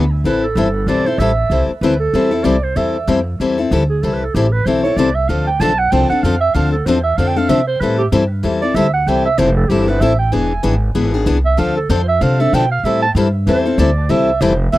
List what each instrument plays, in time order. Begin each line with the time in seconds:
Already playing: upright bass D2
0.24 upright bass A1, steel-string acoustic guitar E3 G3 C4 E4 A4, clarinet B4
0.43 clarinet A4
0.55 upright bass G1, steel-string acoustic guitar E3 G3 C4 E4 A4
0.87 upright bass B1, steel-string acoustic guitar E3 G3 C4 E4 A4, clarinet D5
1.06 steel-string acoustic guitar C4 E4 A4, clarinet C5
1.18 upright bass A1, steel-string acoustic guitar E3 G3 C4 E4 A4, clarinet E5
1.50 upright bass C2, steel-string acoustic guitar E3 G3 C4 E4 A4
1.68 muted upright bass stroke
1.81 upright bass D2, steel-string acoustic guitar E3 G3 C4 E4 A4, clarinet B4
2.00 clarinet A4
2.13 upright bass E2, steel-string acoustic guitar E3 G3 C4 E4 A4
2.31 steel-string acoustic guitar C4 E4 A4
2.44 upright bass C2, steel-string acoustic guitar E3 G3 C4 E4 A4, clarinet D5
2.63 clarinet C5
2.76 upright bass E2, steel-string acoustic guitar E3 G3 C4 E4 A4, clarinet E5
3.07 upright bass F2, steel-string acoustic guitar E3 G3 C4 E4 A4
3.40 upright bass E2, steel-string acoustic guitar E3 G3 C4 E4 A4
3.58 steel-string acoustic guitar C4 E4 A4
3.71 upright bass D2, steel-string acoustic guitar E3 G3 C4 E4 A4
3.89 clarinet G#4
4.02 upright bass C2, steel-string acoustic guitar E3 G3 C4 E4 A4, clarinet A4
4.13 clarinet B4
4.24 clarinet A4
4.34 upright bass A1, steel-string acoustic guitar E3 G3 C4 E4 A4, clarinet G4
4.52 clarinet B4
4.65 upright bass B1, steel-string acoustic guitar E3 G3 C4 E4 A4, clarinet C5
4.83 steel-string acoustic guitar C4 E4 A4, clarinet C#5
4.97 upright bass C2, steel-string acoustic guitar E3 G3 C4 E4 A4, clarinet D5
5.15 clarinet E5
5.28 upright bass D2, steel-string acoustic guitar D3 F3 C4 D4 A4, clarinet F5
5.47 clarinet G5
5.60 upright bass B1, steel-string acoustic guitar D3 F3 C4 D4 A4, clarinet A5
5.79 clarinet F#5
5.91 upright bass C2, steel-string acoustic guitar D3 F3 C4 D4 A4, clarinet G5
6.09 steel-string acoustic guitar C4 D4 A4, clarinet F#5
6.23 upright bass F2, steel-string acoustic guitar D3 F3 C4 D4 A4, clarinet F5
6.40 clarinet E5
6.54 upright bass D2, steel-string acoustic guitar D3 F3 C4 D4 A4, clarinet F5
6.72 clarinet A4
6.85 upright bass E2, steel-string acoustic guitar D3 F3 C4 D4 A4, clarinet C5
7.03 clarinet E5
7.17 upright bass F2, steel-string acoustic guitar D3 F3 C4 D4 A4, clarinet F5
7.28 clarinet G5
7.36 steel-string acoustic guitar C4 D4 A4, clarinet F5
7.49 upright bass C3, steel-string acoustic guitar D3 F3 C4 D4 A4, clarinet E5
7.67 clarinet C5
7.80 upright bass A2, steel-string acoustic guitar E3 G3 C4 E4 A4, clarinet B4
7.98 clarinet G4
8.12 upright bass G2, steel-string acoustic guitar E3 G3 C4 E4 A4
8.43 upright bass E2, steel-string acoustic guitar E3 G3 C4 E4 A4
8.62 steel-string acoustic guitar C4 E4 A4, clarinet D5
8.74 upright bass D2, steel-string acoustic guitar E3 G3 C4 E4 A4, clarinet E5
8.93 clarinet F#5
9.06 upright bass C2, steel-string acoustic guitar E3 G3 C4 E4 A4, clarinet G5
9.25 clarinet E5
9.38 upright bass F1, steel-string acoustic guitar E3 G3 C4 E4 A4, clarinet C5
9.56 clarinet A4
9.68 upright bass G1, steel-string acoustic guitar E3 G3 C4 E4 A4, clarinet G4
9.88 steel-string acoustic guitar C4 E4 A4, clarinet B4
10.01 upright bass A1, steel-string acoustic guitar E3 G3 C4 E4 A4, clarinet E5
10.18 clarinet G5
10.32 upright bass E1, steel-string acoustic guitar E3 B3 D4 G#4, clarinet G#5
10.63 upright bass G#1, steel-string acoustic guitar E3 B3 D4 G#4
10.95 upright bass G#1, steel-string acoustic guitar E3 B3 D4 G#4
11.14 steel-string acoustic guitar B3 D4 G#4
11.26 upright bass C2, steel-string acoustic guitar E3 B3 D4 G#4
11.45 clarinet E5
11.57 upright bass D2, steel-string acoustic guitar D3 F3 C4 D4 A4, clarinet F5
11.77 clarinet A4
11.89 upright bass F2, steel-string acoustic guitar D3 F3 C4 D4 A4, clarinet C5
12.08 clarinet E5
12.21 upright bass C3, steel-string acoustic guitar D3 F3 C4 D4 A4, clarinet F5
12.40 steel-string acoustic guitar C4 D4 A4, clarinet E5
12.53 upright bass B2, steel-string acoustic guitar D3 F3 C4 D4 A4, clarinet G5
12.71 clarinet F5
12.84 upright bass A2, steel-string acoustic guitar E3 G3 C4 E4 A4, clarinet E5
13.02 clarinet A5
13.15 upright bass G2, steel-string acoustic guitar E3 G3 C4 E4 A4
13.47 upright bass E2, steel-string acoustic guitar E3 G3 C4 E4 A4, clarinet C5
13.65 steel-string acoustic guitar C4 E4 A4
13.78 upright bass D2, steel-string acoustic guitar E3 G3 C4 E4 A4, clarinet D5
14.09 upright bass C2, steel-string acoustic guitar E3 G3 C4 E4 A4, clarinet E5
14.41 upright bass F1, steel-string acoustic guitar E3 G3 C4 E4 A4, clarinet C5
14.72 upright bass E1, steel-string acoustic guitar E3 B3 D4 G#4, clarinet E5